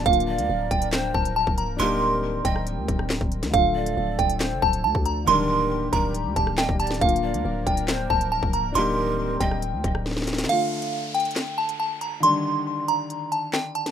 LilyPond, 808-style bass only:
\new Staff \with { instrumentName = "808-style bass" } { \clef bass \time 4/4 \key d \phrygian \tempo 4 = 138 d,,8. d,16 d,,8 d,,4 d,,8. d,,8 c,,16 | d,,4. d,,8. d,16 d,,8. d,,8 d,16 | d,,4 d,,8 d,,8. f,,16 d,,8 d,16 d,8. | d,,4. d,,8. d,16 d,,8. d,,8. |
d,,8. d,16 d,,8 d,,4 d,,8. d,,8 c,,16 | d,,4. d,,8. d,16 d,,4. | r1 | r1 | }